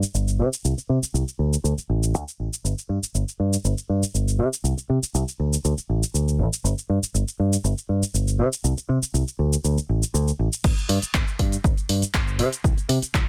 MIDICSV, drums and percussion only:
0, 0, Header, 1, 2, 480
1, 0, Start_track
1, 0, Tempo, 500000
1, 617, Time_signature, 4, 2, 24, 8
1, 12755, End_track
2, 0, Start_track
2, 0, Title_t, "Drums"
2, 28, Note_on_c, 9, 82, 55
2, 124, Note_off_c, 9, 82, 0
2, 142, Note_on_c, 9, 82, 53
2, 238, Note_off_c, 9, 82, 0
2, 268, Note_on_c, 9, 82, 29
2, 364, Note_off_c, 9, 82, 0
2, 510, Note_on_c, 9, 82, 60
2, 606, Note_off_c, 9, 82, 0
2, 623, Note_on_c, 9, 82, 51
2, 719, Note_off_c, 9, 82, 0
2, 751, Note_on_c, 9, 82, 29
2, 847, Note_off_c, 9, 82, 0
2, 990, Note_on_c, 9, 82, 62
2, 1086, Note_off_c, 9, 82, 0
2, 1105, Note_on_c, 9, 82, 51
2, 1201, Note_off_c, 9, 82, 0
2, 1231, Note_on_c, 9, 82, 30
2, 1327, Note_off_c, 9, 82, 0
2, 1472, Note_on_c, 9, 82, 59
2, 1568, Note_off_c, 9, 82, 0
2, 1584, Note_on_c, 9, 82, 50
2, 1680, Note_off_c, 9, 82, 0
2, 1710, Note_on_c, 9, 82, 31
2, 1806, Note_off_c, 9, 82, 0
2, 1950, Note_on_c, 9, 82, 56
2, 2046, Note_off_c, 9, 82, 0
2, 2064, Note_on_c, 9, 82, 53
2, 2160, Note_off_c, 9, 82, 0
2, 2192, Note_on_c, 9, 82, 32
2, 2288, Note_off_c, 9, 82, 0
2, 2432, Note_on_c, 9, 82, 62
2, 2528, Note_off_c, 9, 82, 0
2, 2547, Note_on_c, 9, 82, 52
2, 2643, Note_off_c, 9, 82, 0
2, 2673, Note_on_c, 9, 82, 31
2, 2769, Note_off_c, 9, 82, 0
2, 2912, Note_on_c, 9, 82, 66
2, 3008, Note_off_c, 9, 82, 0
2, 3024, Note_on_c, 9, 82, 53
2, 3120, Note_off_c, 9, 82, 0
2, 3154, Note_on_c, 9, 82, 31
2, 3250, Note_off_c, 9, 82, 0
2, 3391, Note_on_c, 9, 82, 66
2, 3487, Note_off_c, 9, 82, 0
2, 3503, Note_on_c, 9, 82, 52
2, 3599, Note_off_c, 9, 82, 0
2, 3628, Note_on_c, 9, 82, 32
2, 3724, Note_off_c, 9, 82, 0
2, 3870, Note_on_c, 9, 82, 63
2, 3966, Note_off_c, 9, 82, 0
2, 3984, Note_on_c, 9, 82, 52
2, 4080, Note_off_c, 9, 82, 0
2, 4111, Note_on_c, 9, 82, 32
2, 4207, Note_off_c, 9, 82, 0
2, 4351, Note_on_c, 9, 82, 62
2, 4447, Note_off_c, 9, 82, 0
2, 4463, Note_on_c, 9, 82, 55
2, 4559, Note_off_c, 9, 82, 0
2, 4589, Note_on_c, 9, 82, 33
2, 4685, Note_off_c, 9, 82, 0
2, 4831, Note_on_c, 9, 82, 67
2, 4927, Note_off_c, 9, 82, 0
2, 4944, Note_on_c, 9, 82, 57
2, 5040, Note_off_c, 9, 82, 0
2, 5071, Note_on_c, 9, 82, 34
2, 5167, Note_off_c, 9, 82, 0
2, 5311, Note_on_c, 9, 82, 66
2, 5407, Note_off_c, 9, 82, 0
2, 5422, Note_on_c, 9, 82, 56
2, 5518, Note_off_c, 9, 82, 0
2, 5548, Note_on_c, 9, 82, 35
2, 5644, Note_off_c, 9, 82, 0
2, 5790, Note_on_c, 9, 82, 64
2, 5886, Note_off_c, 9, 82, 0
2, 5903, Note_on_c, 9, 82, 57
2, 5999, Note_off_c, 9, 82, 0
2, 6031, Note_on_c, 9, 82, 34
2, 6127, Note_off_c, 9, 82, 0
2, 6270, Note_on_c, 9, 82, 68
2, 6366, Note_off_c, 9, 82, 0
2, 6386, Note_on_c, 9, 82, 57
2, 6482, Note_off_c, 9, 82, 0
2, 6511, Note_on_c, 9, 82, 34
2, 6607, Note_off_c, 9, 82, 0
2, 6751, Note_on_c, 9, 82, 68
2, 6847, Note_off_c, 9, 82, 0
2, 6865, Note_on_c, 9, 82, 58
2, 6961, Note_off_c, 9, 82, 0
2, 6990, Note_on_c, 9, 82, 35
2, 7086, Note_off_c, 9, 82, 0
2, 7228, Note_on_c, 9, 82, 67
2, 7324, Note_off_c, 9, 82, 0
2, 7342, Note_on_c, 9, 82, 56
2, 7438, Note_off_c, 9, 82, 0
2, 7469, Note_on_c, 9, 82, 32
2, 7565, Note_off_c, 9, 82, 0
2, 7708, Note_on_c, 9, 82, 63
2, 7804, Note_off_c, 9, 82, 0
2, 7822, Note_on_c, 9, 82, 57
2, 7918, Note_off_c, 9, 82, 0
2, 7947, Note_on_c, 9, 82, 35
2, 8043, Note_off_c, 9, 82, 0
2, 8187, Note_on_c, 9, 82, 67
2, 8283, Note_off_c, 9, 82, 0
2, 8299, Note_on_c, 9, 82, 56
2, 8395, Note_off_c, 9, 82, 0
2, 8427, Note_on_c, 9, 82, 32
2, 8523, Note_off_c, 9, 82, 0
2, 8667, Note_on_c, 9, 82, 66
2, 8763, Note_off_c, 9, 82, 0
2, 8781, Note_on_c, 9, 82, 55
2, 8877, Note_off_c, 9, 82, 0
2, 8908, Note_on_c, 9, 82, 32
2, 9004, Note_off_c, 9, 82, 0
2, 9148, Note_on_c, 9, 82, 70
2, 9244, Note_off_c, 9, 82, 0
2, 9260, Note_on_c, 9, 82, 57
2, 9356, Note_off_c, 9, 82, 0
2, 9388, Note_on_c, 9, 82, 34
2, 9484, Note_off_c, 9, 82, 0
2, 9627, Note_on_c, 9, 82, 65
2, 9723, Note_off_c, 9, 82, 0
2, 9742, Note_on_c, 9, 82, 58
2, 9838, Note_off_c, 9, 82, 0
2, 9869, Note_on_c, 9, 82, 34
2, 9965, Note_off_c, 9, 82, 0
2, 10107, Note_on_c, 9, 82, 67
2, 10203, Note_off_c, 9, 82, 0
2, 10216, Note_on_c, 9, 42, 59
2, 10216, Note_on_c, 9, 49, 102
2, 10218, Note_on_c, 9, 36, 115
2, 10222, Note_on_c, 9, 82, 57
2, 10312, Note_off_c, 9, 42, 0
2, 10312, Note_off_c, 9, 49, 0
2, 10314, Note_off_c, 9, 36, 0
2, 10318, Note_off_c, 9, 82, 0
2, 10344, Note_on_c, 9, 42, 27
2, 10351, Note_on_c, 9, 82, 33
2, 10440, Note_off_c, 9, 42, 0
2, 10447, Note_off_c, 9, 82, 0
2, 10457, Note_on_c, 9, 46, 106
2, 10553, Note_off_c, 9, 46, 0
2, 10582, Note_on_c, 9, 42, 57
2, 10588, Note_on_c, 9, 82, 68
2, 10678, Note_off_c, 9, 42, 0
2, 10684, Note_off_c, 9, 82, 0
2, 10697, Note_on_c, 9, 36, 119
2, 10697, Note_on_c, 9, 42, 58
2, 10699, Note_on_c, 9, 39, 127
2, 10703, Note_on_c, 9, 82, 58
2, 10793, Note_off_c, 9, 36, 0
2, 10793, Note_off_c, 9, 42, 0
2, 10795, Note_off_c, 9, 39, 0
2, 10799, Note_off_c, 9, 82, 0
2, 10823, Note_on_c, 9, 42, 29
2, 10829, Note_on_c, 9, 82, 33
2, 10919, Note_off_c, 9, 42, 0
2, 10925, Note_off_c, 9, 82, 0
2, 10937, Note_on_c, 9, 36, 62
2, 10937, Note_on_c, 9, 46, 105
2, 11033, Note_off_c, 9, 36, 0
2, 11033, Note_off_c, 9, 46, 0
2, 11062, Note_on_c, 9, 42, 57
2, 11069, Note_on_c, 9, 82, 71
2, 11158, Note_off_c, 9, 42, 0
2, 11165, Note_off_c, 9, 82, 0
2, 11177, Note_on_c, 9, 36, 122
2, 11177, Note_on_c, 9, 42, 58
2, 11183, Note_on_c, 9, 82, 57
2, 11273, Note_off_c, 9, 36, 0
2, 11273, Note_off_c, 9, 42, 0
2, 11279, Note_off_c, 9, 82, 0
2, 11303, Note_on_c, 9, 42, 29
2, 11309, Note_on_c, 9, 82, 35
2, 11399, Note_off_c, 9, 42, 0
2, 11405, Note_off_c, 9, 82, 0
2, 11417, Note_on_c, 9, 46, 110
2, 11513, Note_off_c, 9, 46, 0
2, 11542, Note_on_c, 9, 42, 57
2, 11548, Note_on_c, 9, 82, 69
2, 11638, Note_off_c, 9, 42, 0
2, 11644, Note_off_c, 9, 82, 0
2, 11656, Note_on_c, 9, 42, 58
2, 11657, Note_on_c, 9, 36, 127
2, 11658, Note_on_c, 9, 39, 127
2, 11662, Note_on_c, 9, 82, 59
2, 11752, Note_off_c, 9, 42, 0
2, 11753, Note_off_c, 9, 36, 0
2, 11754, Note_off_c, 9, 39, 0
2, 11758, Note_off_c, 9, 82, 0
2, 11783, Note_on_c, 9, 42, 28
2, 11789, Note_on_c, 9, 82, 35
2, 11879, Note_off_c, 9, 42, 0
2, 11885, Note_off_c, 9, 82, 0
2, 11895, Note_on_c, 9, 46, 112
2, 11991, Note_off_c, 9, 46, 0
2, 12024, Note_on_c, 9, 42, 55
2, 12030, Note_on_c, 9, 82, 69
2, 12120, Note_off_c, 9, 42, 0
2, 12126, Note_off_c, 9, 82, 0
2, 12137, Note_on_c, 9, 36, 118
2, 12138, Note_on_c, 9, 42, 57
2, 12145, Note_on_c, 9, 82, 56
2, 12233, Note_off_c, 9, 36, 0
2, 12234, Note_off_c, 9, 42, 0
2, 12241, Note_off_c, 9, 82, 0
2, 12265, Note_on_c, 9, 42, 27
2, 12271, Note_on_c, 9, 82, 33
2, 12361, Note_off_c, 9, 42, 0
2, 12367, Note_off_c, 9, 82, 0
2, 12377, Note_on_c, 9, 46, 111
2, 12473, Note_off_c, 9, 46, 0
2, 12503, Note_on_c, 9, 42, 55
2, 12509, Note_on_c, 9, 82, 66
2, 12599, Note_off_c, 9, 42, 0
2, 12605, Note_off_c, 9, 82, 0
2, 12617, Note_on_c, 9, 36, 127
2, 12618, Note_on_c, 9, 42, 56
2, 12621, Note_on_c, 9, 39, 127
2, 12625, Note_on_c, 9, 82, 54
2, 12713, Note_off_c, 9, 36, 0
2, 12714, Note_off_c, 9, 42, 0
2, 12717, Note_off_c, 9, 39, 0
2, 12721, Note_off_c, 9, 82, 0
2, 12755, End_track
0, 0, End_of_file